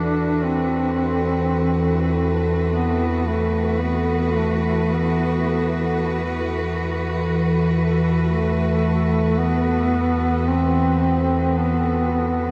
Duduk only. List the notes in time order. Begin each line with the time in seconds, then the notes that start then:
Already playing: D4
0.44 C4
2.69 B3
3.27 A3
3.81 B3
4.36 A3
4.93 B3
8.24 A3
9.38 B3
10.48 C4
11.59 B3